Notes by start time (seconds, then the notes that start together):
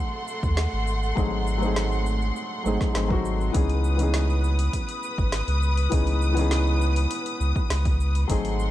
Already playing: F#3 A3 C4 D#4 G#4 F#5 C6
0.28 cabasa
0.43 D#2, kick, cabasa
0.57 snare, cabasa
0.73 G#1
0.87 cabasa
1.03 cabasa
1.15 G#1 F#3 A3 C4 D#4 G#4, kick, cabasa
1.47 cabasa
1.58 F#3 A3 C4
1.62 D#4 G#4, cabasa
1.76 snare, cabasa
1.92 cabasa
2.06 cabasa
2.22 cabasa
2.36 cabasa
2.64 G#1 F#3 A3 C4 D#4, cabasa
2.68 G#4
2.81 kick, snare, cabasa
2.93 G#1 F#3 A3 C4 D#4 G#4, snare, cabasa
3.08 F#3 A3 C4 D#4 F#4, kick
3.25 cabasa
3.41 cabasa
3.52 C#2 E3 B3 C#4 D#4 G#4 B4 D#6, kick, open hi-hat, cabasa
3.69 open hi-hat
3.84 cabasa
3.95 E3 B3 C#4, open hi-hat
4.00 D#4 G#4, cabasa
4.14 snare, open hi-hat, cabasa
4.30 cabasa
4.44 cabasa
4.59 open hi-hat, cabasa
4.73 kick, open hi-hat, cabasa
4.89 open hi-hat
5.03 cabasa
5.18 G#1, kick, cabasa
5.32 snare, open hi-hat, cabasa
5.48 C#2, open hi-hat
5.63 cabasa
5.77 open hi-hat, cabasa
5.90 C#2 E3 B3 C#4 D#4 G#4, kick, open hi-hat, cabasa
6.07 open hi-hat
6.22 cabasa
6.33 E3 B3
6.37 C#4 D#4 G#4, open hi-hat, cabasa
6.51 snare, open hi-hat, cabasa
6.67 cabasa
6.81 cabasa
6.96 open hi-hat, cabasa
7.11 open hi-hat, cabasa
7.26 open hi-hat
7.40 C#2, cabasa
7.56 kick, cabasa
7.70 C#2, snare, open hi-hat, cabasa
7.85 kick, open hi-hat
8.00 cabasa
8.15 open hi-hat, cabasa
8.28 G#1 F#3 A3 C4 D#4 G#4 F#5 C6, kick, open hi-hat, cabasa
8.45 open hi-hat
8.60 cabasa